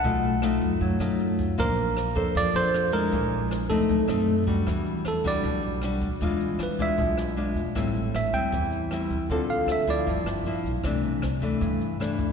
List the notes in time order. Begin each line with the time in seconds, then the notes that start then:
Already playing: F#5
0.04 B1 B2 A3 D#4 F4, kick, closed hi-hat
0.24 closed hi-hat
0.42 A3 D#4 F4, cross-stick, closed hi-hat
0.61 F#2, kick, closed hi-hat
0.80 F#2 F#3, kick, closed hi-hat
0.99 F#2 A3 D#4 F4, cross-stick, closed hi-hat
1.19 closed hi-hat
1.39 kick, closed hi-hat
1.58 A#1 A#3 D4 A#4 C5, kick, cross-stick, closed hi-hat
1.78 closed hi-hat
1.97 cross-stick, closed hi-hat
2.15 F2 D4 A4 C5, kick, closed hi-hat
2.35 F2 F3 D5, kick, closed hi-hat
2.53 F2 D4 A4 C5, closed hi-hat
2.74 cross-stick, closed hi-hat
2.92 G#3 D4 E4 A#4, closed hi-hat
3.11 A#1 A#2, kick, closed hi-hat
3.32 closed hi-hat
3.51 cross-stick, closed hi-hat
3.69 F2 A3 C4 D#4 A4, kick, closed hi-hat
3.88 B1 B2, kick, closed hi-hat
4.07 F#2 A3 C4 D#4, cross-stick, closed hi-hat
4.28 closed hi-hat
4.47 G3 D4 F#4, kick, closed hi-hat
4.67 E2 E3, kick, cross-stick, closed hi-hat
4.86 closed hi-hat
5.05 E2 A4, cross-stick, closed hi-hat
5.24 G3 D4 F#4 D5, kick, closed hi-hat
5.43 B1 B2, kick, closed hi-hat
5.62 closed hi-hat
5.82 G3 D4 F#4, cross-stick, closed hi-hat
6.01 E2, kick, closed hi-hat
6.21 E2 E3 G#3 D4 F4, kick, closed hi-hat
6.40 closed hi-hat
6.58 E2, cross-stick, closed hi-hat
6.63 B4
6.79 G#3 D4 F4 E5, kick, closed hi-hat
6.98 B1 B2, kick, closed hi-hat
7.18 cross-stick, closed hi-hat
7.36 G#3 D4 F4, closed hi-hat
7.54 E2, closed hi-hat
7.75 A1 A2 G3 C4 E4, kick, cross-stick, closed hi-hat
7.95 closed hi-hat
8.14 A1 E5, cross-stick, closed hi-hat
8.33 G3 C4 E4 G5, kick, closed hi-hat
8.53 E2 E3, kick, closed hi-hat
8.72 closed hi-hat
8.91 G3 C4 E4, cross-stick, closed hi-hat
9.10 A1, kick, closed hi-hat
9.30 D2 D3 C4 F4 A4, kick, closed hi-hat
9.49 F5, closed hi-hat
9.66 D2, cross-stick, closed hi-hat
9.72 E5
9.88 F3 B3 E4 D5, kick, closed hi-hat
10.07 G1 G2, kick, closed hi-hat
10.24 G1, cross-stick, closed hi-hat
10.44 A1 F3 B3 E4, closed hi-hat
10.64 B1, closed hi-hat
10.83 C2 C3 E3 A3 D4, kick, cross-stick, closed hi-hat
11.03 closed hi-hat
11.22 C2, cross-stick, closed hi-hat
11.42 E3 A3 D4, kick, closed hi-hat
11.61 G2, kick, closed hi-hat
11.81 closed hi-hat
12.00 E3 A3 D4, cross-stick, closed hi-hat
12.19 C2, kick, closed hi-hat